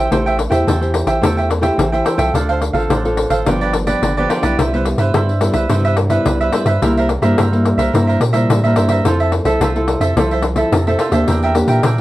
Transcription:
Already playing: C5
0.10 A1 A3 E4 G4 A4 C5 E5 G5, pandeiro
0.26 C5 E5 G5, pandeiro
0.37 muted cavaquinho stroke, pandeiro
0.49 E2 E4 G4 C5 E5 G5, pandeiro
0.66 E2 E3 A4 C5 E5 G5, pandeiro
0.81 E4 G4 C5, pandeiro
0.94 pandeiro
1.06 A1 C5 E5 G5, pandeiro
1.21 E2 A3 E4 G4 A4 C5 E5 G5, pandeiro
1.37 C5 E5 G5, pandeiro
1.49 muted cavaquinho stroke, pandeiro
1.61 E4 G4 C5 E5 G5, pandeiro
1.77 A1 E3, pandeiro
1.92 E4 G4 C5 E5 G5, pandeiro
2.05 A4 C5 E5 G5, pandeiro
2.17 C2 C4 F4 A4 C5 E5 G5, pandeiro
2.34 D2 D3 D4 A4 C5 F5, pandeiro
2.49 A4 C5 F5, pandeiro
2.61 muted cavaquinho stroke, pandeiro
2.73 A1 C4 F4 A4 C5 F5, pandeiro
2.90 A1 A2 D4 A4 C5 F5, pandeiro
3.05 C4 F4 A4, pandeiro
3.17 pandeiro
3.30 G#1 A4 C5 F5, pandeiro
3.46 G1 G2 F3 B3 D4 F4 G4 B4 D5, pandeiro
3.61 G4 B4 D5, pandeiro
3.73 muted cavaquinho stroke, pandeiro
3.87 F3 B3 D4 G4 B4 D5, pandeiro
4.02 G1 D3, pandeiro
4.17 F3 B3 D4 G4 B4 D5, pandeiro
4.29 F4 G4 B4 D5, pandeiro
4.42 B1 G3 B3 E4 G4 B4 D5, pandeiro
4.58 C2 C3 E4 B4 C5 E5, pandeiro
4.73 G3 B3 E4 B4 C5 E5, pandeiro
4.85 muted cavaquinho stroke, pandeiro
4.98 G2 B4 C5 E5, pandeiro
5.14 G2 G3 B3 E4 B4 C5 E5, pandeiro
5.29 pandeiro
5.41 G3 B3 E4, pandeiro
5.54 C2 B4 C5 E5, pandeiro
5.70 G2 C3 G3 B3 E4 B4 C5 E5, pandeiro
5.85 B4 C5 E5, pandeiro
5.97 muted cavaquinho stroke, pandeiro
6.09 G3 B3 E4 B4 C5 E5, pandeiro
6.25 C2 G2, pandeiro
6.40 B4 C5 E5, pandeiro
6.52 G3 B3 E4 B4 C5 E5, pandeiro
6.65 G2 B4 C5 E5, pandeiro
6.81 C2 C3 G3 A#3 E4 A#4 C5 E5, pandeiro
6.97 A#4 C5 E5, pandeiro
7.09 muted cavaquinho stroke, pandeiro
7.22 G2 G3 A#3 E4 A#4 C5 E5, pandeiro
7.37 G2 E4 A#4 C5 E5, pandeiro
7.52 G3 A#3 E4, pandeiro
7.66 pandeiro
7.78 C2 A#4 C5 E5, pandeiro
7.93 G2 C3 G3 A#3 E4 A#4 C5 E5, pandeiro
8.08 A#4 C5 E5, pandeiro
8.21 A#2, muted cavaquinho stroke, pandeiro
8.33 G3 A#3 E4 A#4 C5 E5, pandeiro
8.49 G2 A2, pandeiro
8.64 G3 A#3 E4 A#4 C5 E5, pandeiro
8.76 G2 E4 A#4 C5 E5, pandeiro
8.89 A#4 C5 E5, pandeiro
9.05 F2 F3 C4 E4 F4 A4 C5 E5, pandeiro
9.20 A4 C5 E5, pandeiro
9.32 muted cavaquinho stroke, pandeiro
9.45 C2 C4 E4 A4 C5 E5, pandeiro
9.60 C2 C3 F4 A4 C5 E5, pandeiro
9.76 C4 E4 A4, pandeiro
9.88 pandeiro
10.00 F2 A4 C5 E5, pandeiro
10.16 C2 F3 C4 E4 F4 A4 C5 E5, pandeiro
10.31 A4 C5 E5, pandeiro
10.43 muted cavaquinho stroke, pandeiro
10.56 C4 E4 A4 C5 E5, pandeiro
10.72 F2 C3, pandeiro
10.87 C4 E4 A4 C5 E5, pandeiro
10.99 F4 A4 C5 E5, pandeiro
11.11 D#2 A#3 D4 G4 A4 C5 E5, pandeiro
11.28 E2 E3 D4 A#4 E5 G5, pandeiro
11.43 A#4 E5 G5, pandeiro
11.55 A#3 D4 G4, muted cavaquinho stroke, pandeiro
11.68 A#2 A#4 E5 G5, pandeiro
11.83 A#2 E3 D4 A#4 E5 G5, pandeiro

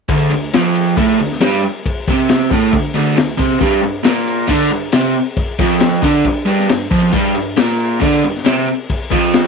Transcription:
0.09 D2 D3, kick, crash
0.31 D2, crash
0.54 F2 F3, snare, crash
0.75 crash
0.97 A2 A3, kick, crash
1.20 D2, crash
1.32 snare
1.41 G2 G3, snare, crash
1.63 crash
1.86 kick, crash
2.08 C3 C4, kick, crash
2.29 snare, crash
2.50 A2 A3, kick, crash
2.73 D2, kick, crash
2.94 D2 D3, crash
3.17 D2, snare, crash
3.38 C3 C4, kick, crash
3.51 snare
3.60 G2 G3, kick, crash
3.83 G2, crash
4.04 A#2 A#3, snare, crash
4.27 crash
4.47 D3 D4, kick, crash
4.71 G2, crash
4.92 C3 C4, snare, crash
5.14 crash
5.37 kick, crash
5.59 F2 F3, kick, crash
5.80 snare, crash
6.02 D3 D4, kick, crash
6.25 G2, kick, crash
6.46 G2 G3, crash
6.59 snare
6.69 G2, snare, crash
6.91 F2 F3, kick, crash
7.03 snare
7.13 G2 G3, kick, crash
7.35 G2, crash
7.56 A#2 A#3, snare, crash
7.80 crash
8.00 D3 D4, kick, crash
8.23 G2, crash
8.37 snare
8.45 C3 C4, snare, crash
8.68 crash
8.90 kick, crash
9.10 F2 F3, kick, crash
9.34 snare, crash

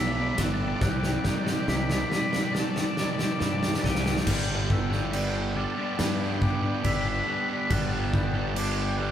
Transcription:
Already playing: B1 E3 G3 B3 D4 G4 E5 E6
0.04 G3 B3 B4 D5 B5
0.10 G3 B3 B4 D5 B5
0.19 G3 B3 B4 D5 B5
0.27 G3 B3 B4 D5 B5
0.34 G3 B3 G4 B4 D5
0.38 G1 A5 F#6, kick, snare, ride
0.42 G3 B3 B4 D5 A5
0.50 G3 B3 B4 D5
0.54 D5 A5
0.59 G3 B3 B4 A5
0.65 G3 B3 B4 D5 A5
0.73 G3 B3 B4 D5 A5
0.81 C2 C3 G3 C4 G4 D5 G5 F#6, kick, snare
0.88 C3 G3 G4 D5 G5
0.96 C3 G3 G4 D5 G5
1.03 C3 G3 G4 D5 G5, snare
1.12 C3 G3 G4 D5 G5
1.20 C3 G3 G4 D5 G5
1.24 C3 D#3 G4 D5 G5, kick, snare
1.29 G3
1.34 C3 G3 G4 D5 G5
1.42 C3 G3 G4 D5 G5
1.47 G4 G5, snare
1.51 C3 G3 D5
1.57 C3 G3 G4 D5 G5
1.66 C2 C3 D#3 G3 G4 D5 B5 D6, snare
1.74 C3 G3 G4 D5 B5
1.81 C3 G3 G4 D5 B5
1.88 C3 G3 G4 D5 B5, snare
1.96 C3 G3 G4 D5 B5
2.04 C3 G3 G4 D5 B5
2.12 C3 G3 G4 D5 B5 D#7, snare
2.19 C3 G3 G4 D5 B5
2.26 C3 G3 G4 D5 B5
2.33 C3 G4 D5 B5, snare
2.38 G3 D5
2.43 C3 G3 G4 B5
2.50 C3 G3 D4 G4 D5 A5
2.55 C3 G4 D5, snare
2.60 G3 A5
2.65 C3 G4 D5 A5
2.70 C3 G3 G4 D5
2.76 G3 A5, snare
2.81 C3 G3 G4 D5
2.85 G4 D5 A5
2.90 C3 G3 A5
2.96 C3 D#3 G3 G4 D5 D6, snare
3.01 C3 G4 D5 A5
3.07 G3 G4 D5 A5
3.12 C3 G3 A5
3.19 C3 G4 D5, snare
3.23 C3 G3 A5
3.27 G4 D5
3.32 C3 G3 G4 D5 A5
3.40 G2 C3 G3 G4 D5 A5, snare
3.47 G3 G4 D5 A5
3.51 C3 G3 A5
3.57 C3 G4 D5
3.62 C3 G3 G4 D5 A5, snare
3.70 C3 G3 G4 D5 A5, snare
3.77 C3 G3 G4 A5
3.81 C2 G3 G4 D5 G5 D#7, kick, snare
3.86 C3 G4 D5 F#5
3.92 G3 F#5 G5, snare
3.96 C3 G4 D5
4.00 C3 G3 G4 D5 F#5 G5
4.06 G3 F#5 G5, snare
4.11 C3 G4 D5 F#5
4.16 C3 G3 G4 D5 G5, snare
4.21 G3 F#5
4.26 G1 G3 B3 D4 G4 B4 G5 G6, kick, crash
4.33 G5
4.41 G5
4.48 B3 D4 G4 G5
4.57 G5
4.65 G5
4.69 G3 B3 D4 G4 E6, kick
4.74 G5
4.80 G5
4.89 D4 G4 G5, snare
4.93 B3 G5
5.04 G5
5.12 G3 B3 D4 G4 G5, crash
5.20 G5
5.28 G5
5.35 G5
5.44 G5
5.52 G3 B3 G5
5.56 D4 G4 A5 D6, muted overdriven electric guitar stroke
5.64 A5
5.72 A5
5.76 B3 D4 G4 A5
5.86 A5
5.92 A5
5.97 G2 G3 B3 D4 G4 G5, snare, crash
6.08 G5
6.15 G4 G5
6.20 B3 D4 G4 G5
6.29 G5
6.37 G3 G5
6.41 G3 B3 D4 G4 G5 D6, kick
6.51 G5
6.59 G4 G5
6.64 B3 D4 G5
6.74 G5
6.82 G1 G3 B3 D4 G4 B5 E6, kick, crash
6.93 B5
7.00 B5
7.05 B3 D4 G4 B5
7.16 B5
7.25 G3 B3 D4 B5
7.29 G4 B5 F#6
7.41 B5
7.48 B3 D4 G4 B5
7.57 B5
7.65 G3 B5
7.70 G1 G3 B3 D4 G4 A5 F#6, kick, crash
7.82 A5
7.89 B3 D4 G4 A5
7.97 A5
8.05 A5
8.12 G3 B3 D4 G4 A5 G6, kick
8.20 A5
8.28 A5
8.33 B3 D4 G4 A5
8.45 A5
8.51 G3 A5
8.55 G3 B3 D4 G4 G5 D6, crash
8.65 G5
8.73 G5
8.82 G5
8.89 G5
8.97 G3 B3 D4 G5 F#6, muted overdriven electric guitar stroke
9.01 G4 G5

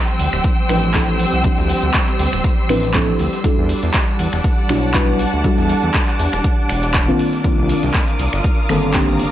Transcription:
Already playing: F3 G3 C4 D4 E4 G4 G5 C6 E6
0.08 closed hi-hat
0.19 D2, closed hi-hat, open hi-hat
0.33 D1, finger snap, snare, closed hi-hat
0.44 kick, closed hi-hat
0.69 A1 F3 C4 D4 E4 B4, finger snap, snare, closed hi-hat, open hi-hat
0.83 closed hi-hat
0.94 F3 C4 D4 E4 A4, kick, snare, clap, closed hi-hat, open hi-hat
1.19 closed hi-hat, open hi-hat
1.33 C2, closed hi-hat
1.44 F3 C4 D4 E4 G4, kick, closed hi-hat
1.58 D2, snare
1.69 closed hi-hat, open hi-hat
1.83 D2, closed hi-hat
1.94 kick, snare, clap, closed hi-hat
2.08 clap, closed hi-hat
2.19 D2, snare, closed hi-hat, open hi-hat
2.33 D1, finger snap, snare, closed hi-hat
2.44 kick, closed hi-hat
2.69 A1 F3 C4 D4 E4 B4, finger snap, closed hi-hat, open hi-hat
2.83 snare, closed hi-hat
2.94 F3 C4 D4 E4 A4, kick, snare, clap, closed hi-hat
3.19 D2, closed hi-hat, open hi-hat
3.33 snare, closed hi-hat
3.44 G3 D4 E4 F#4 A4 F#5 A5 D6, kick, closed hi-hat
3.58 E2
3.69 closed hi-hat, open hi-hat
3.83 E2, snare, closed hi-hat
3.92 G3, kick, snare, clap, closed hi-hat
4.05 F#5, closed hi-hat
4.19 E2, closed hi-hat, open hi-hat
4.33 E1, finger snap, snare, closed hi-hat
4.44 A5, kick, closed hi-hat
4.69 B1 G3 D4 E4 F#4 C#5, finger snap, snare, closed hi-hat, open hi-hat
4.83 closed hi-hat
4.94 G3 D4 E4 F#4 B4, kick, snare, clap, closed hi-hat, open hi-hat
5.19 closed hi-hat, open hi-hat
5.33 D2, closed hi-hat
5.44 G3 D4 E4 F#4 A4, kick, closed hi-hat
5.58 E2, snare
5.69 closed hi-hat, open hi-hat
5.83 E2, closed hi-hat
5.94 kick, snare, clap, closed hi-hat
6.08 clap, closed hi-hat
6.19 E2, snare, closed hi-hat, open hi-hat
6.33 E1, finger snap, snare, closed hi-hat
6.44 kick, closed hi-hat
6.69 E1, finger snap, closed hi-hat, open hi-hat
6.83 snare, closed hi-hat
6.94 kick, snare, clap, closed hi-hat
7.08 D#3 A#3 C4 D4 F4
7.19 A#4 F5 D#6, closed hi-hat, open hi-hat
7.33 snare, closed hi-hat
7.44 D#3 A#3 C4 D4 F4, kick, closed hi-hat
7.58 C2
7.69 closed hi-hat, open hi-hat
7.76 F4
7.83 C2, snare, closed hi-hat
7.94 kick, snare, clap, closed hi-hat
8.08 closed hi-hat
8.19 C2, closed hi-hat, open hi-hat
8.33 G1, finger snap, snare, closed hi-hat
8.44 kick, closed hi-hat
8.58 A#5
8.69 G1 D#3 A#3 C4 D4 A4, finger snap, snare, closed hi-hat, open hi-hat
8.83 closed hi-hat
8.94 D#3 A#3 C4 D4 G4, kick, snare, clap, closed hi-hat, open hi-hat
9.19 closed hi-hat, open hi-hat

